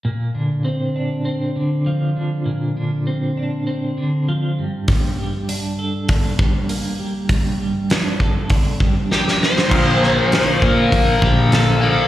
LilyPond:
<<
  \new Staff \with { instrumentName = "Lead electric guitar" } { \time 4/4 \key bes \major \tempo 4 = 99 r1 | r1 | r1 | r2. g'8 c''8~ |
c''4. bes'4 g'8 a'4 | }
  \new Staff \with { instrumentName = "Overdriven electric guitar" } { \clef bass \time 4/4 \key bes \major r1 | r1 | r1 | r1 |
<bes, f bes>2.~ <bes, f bes>8 <bes, f bes>8 | }
  \new Staff \with { instrumentName = "Clean electric guitar" } { \clef bass \time 4/4 \key bes \major bes,8 d8 c'8 d'8 c'8 d8 f8 d8 | bes,8 d8 c'8 d'8 c'8 d8 f8 g,8 | g,8 g8 d'8 a'8 d'8 g8 bes8 g8 | g,8 g8 d'8 a'8 d'8 g8 bes8 g8 |
<bes, d f>8 <bes, d>8 <bes, d f>8 <bes, d>8 <bes, d>8 <bes, d f>8 <bes, d>8 <bes, d>8 | }
  \new Staff \with { instrumentName = "Fingered electric bass" } { \clef bass \time 4/4 \key bes \major r1 | r1 | r1 | r1 |
bes,,4. bes,8 bes,,8 bes,,4. | }
  \new DrumStaff \with { instrumentName = "Drums" } \drummode { \time 4/4 r4 r4 r4 r4 | r4 r4 r4 r4 | <hho bd>4 hho4 <hho bd>8 bd8 hho4 | <hho bd>4 <hho sn>8 bd8 <hho bd>8 bd8 sn16 sn16 sn16 sn16 |
<cymc bd>8 sn8 <hho sn>8 bd8 <hho bd>8 bd8 <hho sn>4 | }
>>